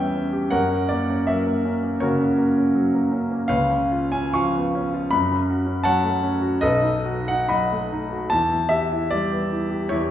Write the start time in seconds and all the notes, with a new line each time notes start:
Already playing: E2 G3 B3 C#4 G4 C#5 E5 G5 A5
0.15 C#4
0.33 G4
0.50 F#2 A#4 C#5 F#5
0.71 C#4
0.89 A#3 D5
1.10 C#4
1.27 F#3 A#4 C#5 E5
1.47 A#3
1.65 C#4
1.83 A#3
2.00 C#3 F#4 A#4 C#5
2.20 C#4
2.38 A#3
2.58 C#4
2.75 F#3
2.95 A#3
3.12 C#4
3.32 A#3
3.48 C#2 B4 C#5 F5
3.70 C#4
3.92 F4
4.12 C#4 G#5
4.34 F3 F5 G#5 C#6
4.57 B3
4.75 C#4
4.94 F4
5.11 F#2 B5
5.32 C#4
5.50 F#4
5.66 C#4
5.84 F#3 C#5 F#5 A5
6.04 A3
6.23 C#4
6.42 F#4
6.61 B1 A4 B4 D#5
6.82 D#4
7.05 F#4
7.28 D#4 F#5
7.49 F#3 D#5 F#5 B5
7.72 A3
7.92 D#4
8.13 F#4
8.30 E2 A5
8.52 E4
8.69 G4 E5
8.92 E4
9.11 G3 D5
9.32 B3
9.52 E4
9.71 G4
9.89 E2 E4 G4 C#5